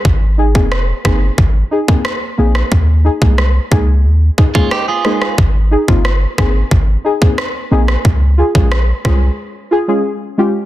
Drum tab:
SD |----r-r-----r--r|----r-------r-rr|----r-r-----r--r|----r-r---------|
BD |o--o--o-o--o----|o--o--o---oo----|o--o--o-o--o----|o--o--o---------|